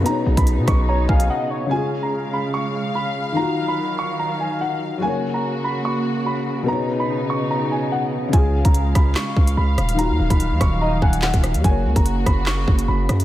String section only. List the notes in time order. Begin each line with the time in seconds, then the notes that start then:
Already playing: C#3
0.06 B3 D#4
1.71 C#3 G#3 F5
3.37 D#3 F#3
5.02 C#3 A#3 F#4
6.68 B3 D#4
8.33 G#3 F5
9.99 D#3 F#3
11.64 C#3 A#3 F#4